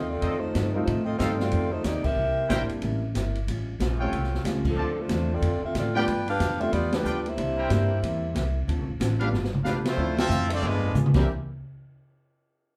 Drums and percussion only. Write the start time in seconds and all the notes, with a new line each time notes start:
0.22 kick, ride
0.55 kick, snare, hi-hat pedal, ride
0.87 kick, ride
1.20 kick, snare, hi-hat pedal, ride
1.40 snare
1.51 kick, ride
1.84 kick, snare, hi-hat pedal, ride
2.04 kick, crash
2.50 kick, snare, hi-hat pedal, ride
2.69 ride
2.82 kick, ride
3.15 kick, snare, hi-hat pedal, ride
3.35 ride
3.47 kick, ride
3.80 kick, snare, hi-hat pedal, ride
4.12 kick, ride
4.24 snare
4.34 snare
4.45 kick, snare, hi-hat pedal, ride
4.65 kick, crash
5.09 kick, snare, hi-hat pedal, ride
5.42 kick, ride
5.75 kick, snare, hi-hat pedal, ride
6.07 kick, ride
6.28 ride
6.40 kick, snare, hi-hat pedal, ride
6.61 ride
6.73 kick, ride
6.92 snare, ride
7.05 hi-hat pedal
7.26 ride
7.38 kick, ride
7.70 kick, snare, hi-hat pedal, ride
8.03 kick, ride
8.35 kick, snare, hi-hat pedal, ride
8.68 kick, ride
9.00 kick, snare, hi-hat pedal, ride
9.21 ride
9.34 snare
9.44 snare
9.54 mid tom
9.65 snare, hi-hat pedal
9.85 snare, ride
10.18 snare, ride
10.31 hi-hat pedal
10.50 ride
10.74 floor tom
10.84 floor tom
10.95 hi-hat pedal, mid tom
11.06 mid tom
11.14 kick, snare, crash